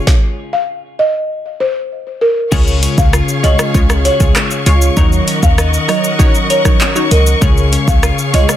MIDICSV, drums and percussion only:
0, 0, Header, 1, 2, 480
1, 0, Start_track
1, 0, Key_signature, -5, "major"
1, 0, Tempo, 612245
1, 56, Time_signature, 4, 2, 24, 8
1, 6716, End_track
2, 0, Start_track
2, 0, Title_t, "Drums"
2, 56, Note_on_c, 9, 36, 110
2, 56, Note_on_c, 9, 38, 90
2, 134, Note_off_c, 9, 36, 0
2, 134, Note_off_c, 9, 38, 0
2, 1976, Note_on_c, 9, 36, 119
2, 1977, Note_on_c, 9, 49, 100
2, 1977, Note_on_c, 9, 82, 87
2, 2055, Note_off_c, 9, 36, 0
2, 2055, Note_off_c, 9, 49, 0
2, 2055, Note_off_c, 9, 82, 0
2, 2097, Note_on_c, 9, 82, 46
2, 2176, Note_off_c, 9, 82, 0
2, 2217, Note_on_c, 9, 42, 86
2, 2217, Note_on_c, 9, 82, 61
2, 2295, Note_off_c, 9, 42, 0
2, 2295, Note_off_c, 9, 82, 0
2, 2336, Note_on_c, 9, 36, 93
2, 2336, Note_on_c, 9, 82, 77
2, 2414, Note_off_c, 9, 36, 0
2, 2415, Note_off_c, 9, 82, 0
2, 2456, Note_on_c, 9, 37, 107
2, 2457, Note_on_c, 9, 82, 77
2, 2535, Note_off_c, 9, 37, 0
2, 2536, Note_off_c, 9, 82, 0
2, 2576, Note_on_c, 9, 82, 54
2, 2654, Note_off_c, 9, 82, 0
2, 2697, Note_on_c, 9, 42, 71
2, 2697, Note_on_c, 9, 82, 52
2, 2775, Note_off_c, 9, 42, 0
2, 2775, Note_off_c, 9, 82, 0
2, 2815, Note_on_c, 9, 37, 100
2, 2815, Note_on_c, 9, 82, 87
2, 2893, Note_off_c, 9, 82, 0
2, 2894, Note_off_c, 9, 37, 0
2, 2937, Note_on_c, 9, 36, 105
2, 2938, Note_on_c, 9, 82, 89
2, 3016, Note_off_c, 9, 36, 0
2, 3016, Note_off_c, 9, 82, 0
2, 3055, Note_on_c, 9, 82, 53
2, 3056, Note_on_c, 9, 37, 103
2, 3133, Note_off_c, 9, 82, 0
2, 3134, Note_off_c, 9, 37, 0
2, 3176, Note_on_c, 9, 42, 66
2, 3176, Note_on_c, 9, 82, 48
2, 3254, Note_off_c, 9, 42, 0
2, 3254, Note_off_c, 9, 82, 0
2, 3295, Note_on_c, 9, 36, 87
2, 3295, Note_on_c, 9, 82, 77
2, 3373, Note_off_c, 9, 82, 0
2, 3374, Note_off_c, 9, 36, 0
2, 3415, Note_on_c, 9, 82, 73
2, 3417, Note_on_c, 9, 37, 96
2, 3417, Note_on_c, 9, 39, 95
2, 3493, Note_off_c, 9, 82, 0
2, 3496, Note_off_c, 9, 37, 0
2, 3496, Note_off_c, 9, 39, 0
2, 3534, Note_on_c, 9, 82, 52
2, 3612, Note_off_c, 9, 82, 0
2, 3656, Note_on_c, 9, 42, 75
2, 3656, Note_on_c, 9, 82, 54
2, 3735, Note_off_c, 9, 42, 0
2, 3735, Note_off_c, 9, 82, 0
2, 3776, Note_on_c, 9, 82, 72
2, 3854, Note_off_c, 9, 82, 0
2, 3896, Note_on_c, 9, 36, 112
2, 3896, Note_on_c, 9, 82, 86
2, 3974, Note_off_c, 9, 36, 0
2, 3974, Note_off_c, 9, 82, 0
2, 4017, Note_on_c, 9, 82, 47
2, 4095, Note_off_c, 9, 82, 0
2, 4137, Note_on_c, 9, 42, 85
2, 4137, Note_on_c, 9, 82, 61
2, 4215, Note_off_c, 9, 42, 0
2, 4215, Note_off_c, 9, 82, 0
2, 4255, Note_on_c, 9, 36, 90
2, 4256, Note_on_c, 9, 82, 79
2, 4334, Note_off_c, 9, 36, 0
2, 4335, Note_off_c, 9, 82, 0
2, 4376, Note_on_c, 9, 37, 106
2, 4377, Note_on_c, 9, 82, 78
2, 4455, Note_off_c, 9, 37, 0
2, 4456, Note_off_c, 9, 82, 0
2, 4496, Note_on_c, 9, 82, 52
2, 4575, Note_off_c, 9, 82, 0
2, 4616, Note_on_c, 9, 37, 96
2, 4617, Note_on_c, 9, 42, 71
2, 4617, Note_on_c, 9, 82, 53
2, 4695, Note_off_c, 9, 37, 0
2, 4696, Note_off_c, 9, 42, 0
2, 4696, Note_off_c, 9, 82, 0
2, 4736, Note_on_c, 9, 82, 88
2, 4815, Note_off_c, 9, 82, 0
2, 4857, Note_on_c, 9, 36, 105
2, 4858, Note_on_c, 9, 82, 84
2, 4936, Note_off_c, 9, 36, 0
2, 4937, Note_off_c, 9, 82, 0
2, 4976, Note_on_c, 9, 82, 55
2, 5054, Note_off_c, 9, 82, 0
2, 5097, Note_on_c, 9, 42, 65
2, 5097, Note_on_c, 9, 82, 48
2, 5175, Note_off_c, 9, 42, 0
2, 5175, Note_off_c, 9, 82, 0
2, 5215, Note_on_c, 9, 37, 89
2, 5216, Note_on_c, 9, 36, 89
2, 5216, Note_on_c, 9, 82, 78
2, 5294, Note_off_c, 9, 36, 0
2, 5294, Note_off_c, 9, 37, 0
2, 5294, Note_off_c, 9, 82, 0
2, 5336, Note_on_c, 9, 82, 73
2, 5338, Note_on_c, 9, 39, 99
2, 5414, Note_off_c, 9, 82, 0
2, 5416, Note_off_c, 9, 39, 0
2, 5455, Note_on_c, 9, 82, 53
2, 5534, Note_off_c, 9, 82, 0
2, 5577, Note_on_c, 9, 42, 76
2, 5577, Note_on_c, 9, 82, 55
2, 5656, Note_off_c, 9, 42, 0
2, 5656, Note_off_c, 9, 82, 0
2, 5697, Note_on_c, 9, 82, 75
2, 5775, Note_off_c, 9, 82, 0
2, 5817, Note_on_c, 9, 36, 117
2, 5817, Note_on_c, 9, 82, 90
2, 5895, Note_off_c, 9, 36, 0
2, 5895, Note_off_c, 9, 82, 0
2, 5938, Note_on_c, 9, 82, 45
2, 6016, Note_off_c, 9, 82, 0
2, 6057, Note_on_c, 9, 42, 88
2, 6057, Note_on_c, 9, 82, 61
2, 6136, Note_off_c, 9, 42, 0
2, 6136, Note_off_c, 9, 82, 0
2, 6176, Note_on_c, 9, 36, 95
2, 6177, Note_on_c, 9, 82, 80
2, 6254, Note_off_c, 9, 36, 0
2, 6255, Note_off_c, 9, 82, 0
2, 6296, Note_on_c, 9, 37, 106
2, 6297, Note_on_c, 9, 82, 78
2, 6374, Note_off_c, 9, 37, 0
2, 6375, Note_off_c, 9, 82, 0
2, 6416, Note_on_c, 9, 82, 52
2, 6495, Note_off_c, 9, 82, 0
2, 6538, Note_on_c, 9, 42, 74
2, 6538, Note_on_c, 9, 82, 52
2, 6616, Note_off_c, 9, 42, 0
2, 6616, Note_off_c, 9, 82, 0
2, 6656, Note_on_c, 9, 37, 101
2, 6656, Note_on_c, 9, 82, 87
2, 6716, Note_off_c, 9, 37, 0
2, 6716, Note_off_c, 9, 82, 0
2, 6716, End_track
0, 0, End_of_file